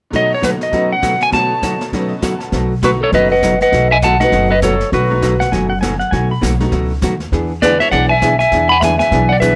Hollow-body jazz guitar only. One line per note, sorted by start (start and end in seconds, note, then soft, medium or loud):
0.14 0.33 B2 soft
0.14 0.33 F#3 medium
0.14 0.33 A3 medium
0.14 0.34 D#4 medium
0.14 0.34 F#4 medium
0.42 0.53 B2 medium
0.42 0.54 F#3 medium
0.42 0.54 A3 medium
0.42 0.54 D#4 medium
0.42 0.54 F#4 medium
0.73 0.93 B2 medium
0.73 0.93 F#3 medium
0.73 0.93 A3 medium
0.73 0.93 D#4 medium
0.73 0.93 F#4 medium
1.03 1.14 B2 medium
1.03 1.14 F#3 medium
1.03 1.14 A3 medium
1.03 1.14 D#4 medium
1.03 1.14 F#4 medium
1.33 1.53 B2 medium
1.33 1.53 F#3 medium
1.33 1.53 A3 medium
1.33 1.53 D#4 medium
1.33 1.53 F#4 medium
1.63 1.74 B2 medium
1.63 1.74 F#3 medium
1.63 1.74 A3 medium
1.63 1.74 D#4 medium
1.63 1.74 F#4 medium
1.93 2.13 B2 medium
1.93 2.13 F#3 medium
1.93 2.13 A3 medium
1.93 2.13 D#4 medium
1.93 2.13 F#4 medium
2.22 2.34 B2 medium
2.22 2.34 F#3 medium
2.22 2.34 A3 medium
2.22 2.34 D#4 medium
2.22 2.34 F#4 medium
2.54 2.73 B2 medium
2.54 2.73 F#3 medium
2.54 2.73 A3 medium
2.54 2.73 D#4 medium
2.54 2.73 F#4 medium
2.83 2.94 B2 medium
2.83 2.94 F#3 medium
2.83 2.94 A3 medium
2.83 2.94 D#4 medium
2.83 2.94 F#4 medium
3.14 3.33 B2 medium
3.14 3.33 F#3 medium
3.14 3.33 A3 medium
3.14 3.33 D#4 medium
3.14 3.33 F#4 medium
3.43 3.54 B2 medium
3.43 3.54 F#3 medium
3.43 3.54 A3 medium
3.43 3.54 D#4 medium
3.43 3.55 F#4 medium
3.73 3.93 B2 medium
3.73 3.93 F#3 medium
3.73 3.93 A3 medium
3.73 3.93 D#4 medium
3.73 3.93 F#4 medium
4.04 4.14 B2 medium
4.04 4.14 F#3 medium
4.04 4.14 A3 medium
4.04 4.15 D#4 medium
4.04 4.15 F#4 medium
4.33 4.53 B2 medium
4.33 4.53 F#3 medium
4.33 4.53 A3 medium
4.33 4.53 D#4 medium
4.33 4.53 F#4 medium
4.63 4.74 B2 medium
4.63 4.74 F#3 medium
4.63 4.74 A3 medium
4.63 4.74 D#4 medium
4.63 4.74 F#4 medium
4.93 5.12 B2 medium
4.93 5.13 F#3 medium
4.93 5.13 A3 medium
4.93 5.13 D#4 medium
4.93 5.13 F#4 medium
5.22 5.33 B2 medium
5.22 5.34 F#3 medium
5.22 5.34 A3 medium
5.22 5.34 D#4 medium
5.22 5.34 F#4 medium
5.53 5.72 B2 medium
5.53 5.72 F#3 medium
5.53 5.73 A3 medium
5.53 5.72 D#4 medium
5.53 5.73 F#4 medium
5.82 5.93 B2 medium
5.82 5.93 F#3 medium
5.82 5.93 A3 medium
5.82 5.93 D#4 medium
5.82 5.93 F#4 medium
6.13 6.32 B2 medium
6.13 6.32 F#3 medium
6.13 6.32 A3 medium
6.13 6.33 D#4 medium
6.13 6.32 F#4 medium
6.41 6.53 B2 medium
6.41 6.53 F#3 medium
6.41 6.53 A3 medium
6.41 6.53 D#4 medium
6.41 6.53 F#4 medium
6.72 6.92 B2 medium
6.72 6.92 F#3 medium
6.72 6.92 A3 medium
6.72 6.92 D#4 medium
6.72 6.92 F#4 medium
7.04 7.14 B2 medium
7.04 7.14 F#3 medium
7.04 7.14 A3 medium
7.04 7.14 D#4 medium
7.04 7.14 F#4 medium
7.32 7.52 E3 medium
7.32 7.52 B3 medium
7.32 7.52 D4 medium
7.32 7.52 G#4 medium
7.62 7.73 E3 medium
7.62 7.73 B3 medium
7.62 7.73 D4 medium
7.62 7.74 G#4 medium
7.93 8.12 E3 medium
7.93 8.12 B3 medium
7.93 8.13 D4 medium
7.93 8.13 G#4 medium
8.23 8.33 E3 medium
8.23 8.34 B3 medium
8.23 8.34 D4 medium
8.23 8.34 G#4 medium
8.53 8.72 E3 medium
8.53 8.72 B3 medium
8.53 8.73 D4 medium
8.53 8.73 G#4 medium
8.83 8.93 E3 medium
8.83 8.93 B3 medium
8.83 8.93 D4 medium
8.83 8.93 G#4 medium
9.13 9.32 E3 medium
9.13 9.32 B3 medium
9.13 9.32 D4 medium
9.13 9.32 G#4 medium
9.41 9.52 E3 medium
9.41 9.53 B3 medium
9.41 9.53 D4 medium
9.41 9.53 G#4 medium